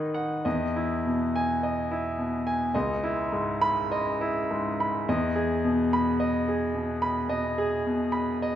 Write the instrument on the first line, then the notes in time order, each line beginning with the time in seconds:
grand piano
Already playing: D#3 D#4 B4 F#5 F#6 G#6 B6 D#7
0.14 F#5
0.45 E2 D#5
0.76 E4
1.06 B2
1.36 G#5
1.63 D#5
1.91 E4
2.19 B2
2.47 G#5
2.74 C#2 D#5
3.03 E4
3.32 G#2
3.62 B5
3.92 D#5
4.21 E4
4.51 G#2
4.80 B5
5.09 E2 D#5
5.36 G#4
5.65 B2
5.93 B5
6.20 D#5
6.48 G#4
6.75 B2
7.02 B5
7.29 B2 D#5
7.58 G#4
7.87 B2
8.12 B5
8.42 D#5